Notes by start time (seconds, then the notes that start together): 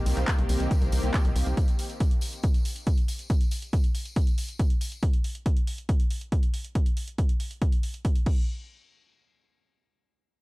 Already playing: D#3 A#3 C4 G4
0.06 C2, open hi-hat, tambourine
0.17 C2 D#3 A#3 C4 G4, clap, closed hi-hat, tambourine
0.28 D#3 A#3 C4 G4, kick, clap, closed hi-hat, tambourine
0.39 C2, closed hi-hat
0.49 C2 D#3 A#3 C4 G4, open hi-hat, tambourine
0.60 C2, closed hi-hat, tambourine
0.71 D#3 A#3 C4 G4, kick, closed hi-hat, tambourine
0.82 C2, closed hi-hat, tambourine
0.92 C2 D#3 A#3 C4 G4, open hi-hat, tambourine
1.03 C2, closed hi-hat, tambourine
1.14 D#3 A#3 C4 G4, kick, clap, closed hi-hat, tambourine
1.25 C2, closed hi-hat
1.36 C2, open hi-hat, tambourine
1.46 C2, closed hi-hat, tambourine
1.57 kick, closed hi-hat, tambourine
1.68 closed hi-hat, tambourine
1.79 open hi-hat, tambourine
1.90 closed hi-hat, tambourine
2.00 kick, closed hi-hat, tambourine
2.11 closed hi-hat
2.21 open hi-hat, tambourine
2.33 closed hi-hat, tambourine
2.43 kick, closed hi-hat, tambourine
2.54 closed hi-hat, tambourine
2.65 open hi-hat, tambourine
2.76 closed hi-hat, tambourine
2.86 kick, closed hi-hat, tambourine
2.98 closed hi-hat
3.08 open hi-hat, tambourine
3.19 closed hi-hat, tambourine
3.30 kick, closed hi-hat, tambourine
3.41 closed hi-hat, tambourine
3.51 open hi-hat, tambourine
3.62 closed hi-hat, tambourine
3.73 kick, closed hi-hat, tambourine
3.84 closed hi-hat
3.95 open hi-hat, tambourine
4.05 closed hi-hat, tambourine
4.16 kick, closed hi-hat, tambourine
4.27 closed hi-hat, tambourine
4.38 open hi-hat, tambourine
4.49 closed hi-hat, tambourine
4.59 kick, closed hi-hat, tambourine
4.70 closed hi-hat
4.81 open hi-hat, tambourine
4.92 closed hi-hat, tambourine
5.03 kick, closed hi-hat
5.13 closed hi-hat
5.24 open hi-hat
5.35 closed hi-hat
5.46 kick, closed hi-hat
5.57 closed hi-hat
5.67 open hi-hat
5.78 closed hi-hat
5.89 kick, closed hi-hat
6.00 closed hi-hat
6.11 open hi-hat
6.21 closed hi-hat
6.32 kick, closed hi-hat
6.43 closed hi-hat
6.54 open hi-hat
6.65 closed hi-hat
6.75 kick, closed hi-hat
6.86 closed hi-hat
6.97 open hi-hat
7.08 closed hi-hat
7.18 kick, closed hi-hat
7.29 closed hi-hat
7.40 open hi-hat
7.51 closed hi-hat
7.62 kick, closed hi-hat
7.72 closed hi-hat
7.83 open hi-hat
7.94 closed hi-hat
8.05 kick, closed hi-hat
8.16 closed hi-hat
8.26 kick, crash